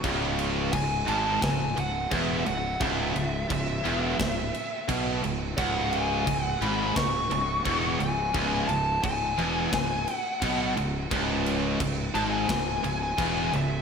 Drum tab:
CC |xxxxxxxx|xxxxxxxx|xxxxxxxx|xxxxxxxx|
SD |----o---|----o---|----o---|----o---|
BD |o-o-o-o-|o-o-o-o-|o-o-o-o-|o-o-o-o-|

CC |xxxxxxxx|
SD |----o---|
BD |o-o-o-o-|